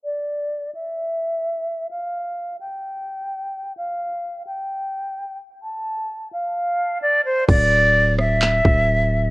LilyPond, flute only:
\new Staff \with { instrumentName = "Flute" } { \time 4/4 \key d \minor \tempo 4 = 129 d''4. e''2~ e''8 | f''4. g''2~ g''8 | f''4. g''2~ g''8 | a''4. f''4. d''8 c''8 |
d''4. e''2~ e''8 | }